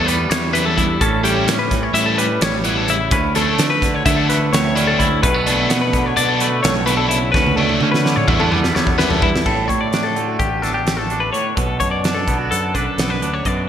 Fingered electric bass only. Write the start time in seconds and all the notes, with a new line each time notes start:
Already playing: E2
0.31 E2
1.02 A1
1.47 A2
1.94 A2
2.41 A1
3.12 D2
3.59 D3
4.06 D3
4.53 D2
5.23 B1
5.70 B2
6.18 B2
6.65 B1
7.35 D2
7.82 D3
8.28 E2
8.76 E2
9.46 A1
9.70 A2
10.40 A1
11.57 B1
11.81 F#2
12.28 B1
12.52 F#2
12.76 B1
12.98 B1
13.22 D2
13.46 F#2